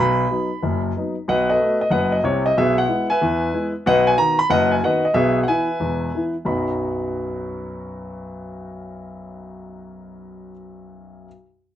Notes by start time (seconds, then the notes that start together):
Already playing: B1 B2
0.00 B5
0.31 F#3 B3 D#4
0.62 F#1 F#2
0.97 F#3 B3 D#4
1.28 B1 B2 B4 D#5 F#5
1.50 A4 B4 D#5
1.60 A3 B3 F#4
1.81 D#5
1.90 F#1 F#2 B4 D#5 F#5
2.12 D#5
2.23 C2 C3 C#5
2.46 D#5
2.57 B1 B2 G#4 B4 E5
2.78 F#5
2.88 G#3 B3 E4
3.10 B4 E5 G#5
3.21 E2 E3
3.53 G#3 B3 E4
3.86 B1 B2 B4 D#5 F#5
4.07 G#5
4.18 D#3 B3 F#4 A#5
4.39 B5
4.50 F#1 F#2 B4 D#5 F#5
4.71 G#5
4.83 D#3 B3 F#4 B4 D#5 F#5
5.05 D#5
5.14 B1 B2 G#4 B4 E5
5.43 E3 F#5
5.48 B3 E4 B4 E5 G#5
5.80 E1 E2
6.15 E3 B3 E4
6.45 B1 F#2 F#3 B3 D#4 F#4 B5